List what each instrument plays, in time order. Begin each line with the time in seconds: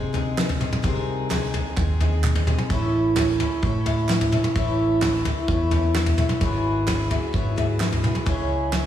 Already playing: fingered electric bass C3, twelve-string acoustic guitar G#3 C4 D#4 G#4
0.13 twelve-string acoustic guitar G#3 C4 D#4 G#4, floor tom
0.38 snare, clap
0.49 floor tom
0.59 twelve-string acoustic guitar G#3 C4 D#4 G#4, mid tom
0.72 mid tom
0.82 fingered electric bass C2, twelve-string acoustic guitar C3 D#3 G#3 C4 D#4 G#4, kick, floor tom
1.29 twelve-string acoustic guitar G#3 C4 D#4 G#4, snare, clap, floor tom
1.53 twelve-string acoustic guitar G#3 C4 D#4 G#4, floor tom
1.76 fingered electric bass D#2, twelve-string acoustic guitar G#3 C4 D#4 G#4, kick, clap
2.00 twelve-string acoustic guitar G#3 C4 D#4 G#4, floor tom
2.24 clap, mid tom
2.35 floor tom
2.47 twelve-string acoustic guitar G#3 C4 D#4 G#4, mid tom
2.58 mid tom
2.70 fingered electric bass A1, twelve-string acoustic guitar A2 E3 A3 C#4 E4 A4, kick, floor tom
3.16 twelve-string acoustic guitar A3 C#4 E4 A4, snare, clap, floor tom
3.40 twelve-string acoustic guitar A3 C#4 E4 A4, floor tom
3.62 fingered electric bass A2, twelve-string acoustic guitar A3 C#4 E4 A4, kick
3.86 twelve-string acoustic guitar A3 C#4 E4 A4, floor tom
4.09 snare, clap
4.21 floor tom
4.32 twelve-string acoustic guitar A3 C#4 E4 A4, mid tom
4.44 mid tom
4.56 fingered electric bass A1, twelve-string acoustic guitar A2 E3 A3 C#4 E4 A4, kick, floor tom
5.01 twelve-string acoustic guitar A3 C#4 E4 A4, snare, clap, floor tom
5.25 twelve-string acoustic guitar A3 C#4 E4 A4, floor tom
5.48 fingered electric bass E2, twelve-string acoustic guitar A3 C#4 E4 A4, kick
5.71 twelve-string acoustic guitar A3 C#4 E4 A4, floor tom
5.95 snare, clap
6.06 floor tom
6.18 twelve-string acoustic guitar A3 C#4 E4 A4, mid tom
6.29 mid tom
6.41 fingered electric bass G#1, twelve-string acoustic guitar G#2 E3 F#3 B3 E4 G#4, kick, floor tom
6.87 twelve-string acoustic guitar F#3 B3 E4 G#4, snare, clap, floor tom
7.10 twelve-string acoustic guitar F#3 B3 E4 G#4, floor tom
7.33 fingered electric bass G#2, twelve-string acoustic guitar F#3 B3 E4 G#4, kick
7.56 twelve-string acoustic guitar F#3 B3 E4 G#4, floor tom
7.80 snare, clap
7.92 floor tom
8.03 twelve-string acoustic guitar F#3 B3 E4 G#4, mid tom
8.15 mid tom
8.26 fingered electric bass C#2, twelve-string acoustic guitar C#3 G#3 C#4 E4 G#4, kick, floor tom
8.72 twelve-string acoustic guitar G#3 C#4 E4 G#4, snare, clap, floor tom